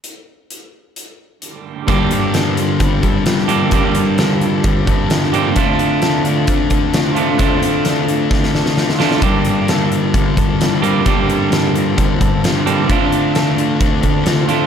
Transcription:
<<
  \new Staff \with { instrumentName = "Clean electric guitar" } { \time 4/4 \key g \dorian \tempo 4 = 131 r1 | bes8 c'8 a'8 f'8 c'8 a'8 f'8 c'8 | bes8 c'8 a'8 f'8 c'8 a'8 f'8 c'8 | c'8 c'8 a'8 f'8 c'8 a'8 f'8 c'8 |
c'8 c'8 a'8 f'8 c'8 a'8 f'8 c'8 | bes8 c'8 a'8 f'8 c'8 a'8 f'8 c'8 | bes8 c'8 a'8 f'8 c'8 a'8 f'8 c'8 | c'8 c'8 a'8 f'8 c'8 a'8 f'8 c'8 | }
  \new Staff \with { instrumentName = "Overdriven electric guitar" } { \time 4/4 \key g \dorian r1 | <g, d g bes d' g'>2.~ <g, d g bes d' g'>8 <g, d g bes d' g'>8 | <g, d g bes d' g'>2.~ <g, d g bes d' g'>8 <g, d g bes d' g'>8 | <d a d' f'>2.~ <d a d' f'>8 <d a d' f'>8 |
<d a d' f'>2.~ <d a d' f'>8 <d a d' f'>8 | <g, d g bes d' g'>2.~ <g, d g bes d' g'>8 <g, d g bes d' g'>8 | <g, d g bes d' g'>2.~ <g, d g bes d' g'>8 <g, d g bes d' g'>8 | <d a d' f'>2.~ <d a d' f'>8 <d a d' f'>8 | }
  \new Staff \with { instrumentName = "Distorted electric guitar" } { \clef bass \time 4/4 \key g \dorian r1 | <g, d g>8 <d g>8 <g, d g>8 <d g>8 <g, d g>8 <d g>8 <g, d g>8 <d g>8 | <g, d g>8 <d g>8 <g, d g>8 <d g>8 <g, d g>8 <d g>8 <g, d g>8 <d g>8 | <d a d'>8 <a d'>8 <d a d'>8 <a d'>8 <d a d'>8 <a d'>8 <d a d'>8 <a d'>8 |
<d a d'>8 <a d'>8 <d a d'>8 <a d'>8 <d a d'>8 <a d'>8 <d a d'>8 <a d'>8 | <g, d g>8 <d g>8 <g, d g>8 <d g>8 <g, d g>8 <d g>8 <g, d g>8 <d g>8 | <g, d g>8 <d g>8 <g, d g>8 <d g>8 <g, d g>8 <d g>8 <g, d g>8 <d g>8 | <d a d'>8 <a d'>8 <d a d'>8 <a d'>8 <d a d'>8 <a d'>8 <d a d'>8 <a d'>8 | }
  \new DrumStaff \with { instrumentName = "Drums" } \drummode { \time 4/4 hh4 hh4 hh4 hh4 | <hh bd>8 hh8 <hh sn>8 hh8 <hh bd>8 <hh bd>8 <hh sn>16 sn16 hh8 | <hh bd>8 hh8 <hh sn>8 hh8 <hh bd>8 <hh bd>8 <hh sn>16 sn16 hh8 | <hh bd>8 hh8 <hh sn>8 hh8 <hh bd>8 <hh bd>8 <hh sn>8 hh8 |
<hh bd>8 hh8 <hh sn>8 hh8 <bd sn>16 sn16 sn16 sn16 sn16 sn16 sn16 sn16 | <hh bd>8 hh8 <hh sn>8 hh8 <hh bd>8 <hh bd>8 <hh sn>8 hh8 | <hh bd>8 hh8 <hh sn>8 hh8 <hh bd>8 <hh bd>8 <hh sn>8 hh8 | <hh bd>8 hh8 <hh sn>8 hh8 <hh bd>8 <hh bd>8 <hh sn>8 hh8 | }
>>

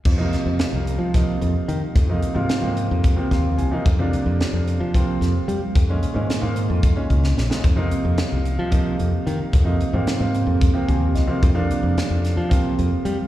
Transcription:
<<
  \new Staff \with { instrumentName = "Grand piano" } { \time 7/8 \key f \minor \tempo 4 = 111 r2. r8 | r2 r8 f''8 aes''8 | r2. r8 | r2. r8 |
r2. r8 | r2 r8 aes''8 ees''8 | r2. r8 | }
  \new Staff \with { instrumentName = "Grand piano" } { \clef bass \time 7/8 \key f \minor r16 <c f bes ees'>4. r16 <c f bes ees'>4. | r16 <c f bes ees'>8 <c f bes f'>8 <c f bes c'>4 <c f bes c'>4 <c f bes ees'>16 | r16 <c f bes d'>4. r16 <c f bes c'>4. | r16 <bes, ees aes des'>8 <bes, ees aes des'>8 <bes, ees aes bes>4 <bes, ees aes des'>4 <bes, ees aes ees'>16 |
r16 <c f bes ees'>4. r16 <c f bes ees'>4. | r16 <c f bes ees'>8 <c f bes c'>8 <c f bes c'>4 <c f bes c'>4 <c f bes c'>16 | r16 <c f bes d'>4. r16 <c f bes c'>4. | }
  \new Staff \with { instrumentName = "Fingered electric bass" } { \clef bass \time 7/8 \key f \minor f,8 r16 f,16 r16 c,8 f8. f,16 r16 ees16 r16 | f,8 r16 aes,16 r16 aes,8 f,8 r16 ees,8 c,16 r16 | f,8 r16 f,16 r16 f,8 f8. f,16 r16 g16 r16 | f,8 r16 aes,16 r16 aes,8 f,8 r16 des,8 bes,,16 r16 |
f,8 r16 f,16 r16 c,8 f8. f,16 r16 ees16 r16 | f,8 r16 aes,16 r16 aes,8 f,8 r16 ees,8 c,16 r16 | f,8 r16 f,16 r16 f,8 f8. f,16 r16 g16 r16 | }
  \new DrumStaff \with { instrumentName = "Drums" } \drummode { \time 7/8 <cymc bd>8 <hh sn>8 <hh sn>8 hh8 <hh bd sn>8 hh8 hh8 | <hh bd>8 hh8 <hh sn>8 hh8 <hh bd>8 <hh bd sn>8 hh8 | <hh bd>8 hh8 <hh sn>8 hh8 <hh bd>8 <hh sn>8 hh8 | <hh bd>8 hh8 <hh sn>8 hh8 <hh bd>8 <hh bd>16 sn16 sn16 sn16 |
<hh bd>8 hh8 <hh sn>8 hh8 <hh bd>8 hh8 hh8 | <hh bd>8 hh8 <hh sn>8 hh8 <hh bd>8 <hh bd>8 <hh sn>8 | <hh bd>8 hh8 <hh sn>8 <hh sn>8 <hh bd>8 hh8 hh8 | }
>>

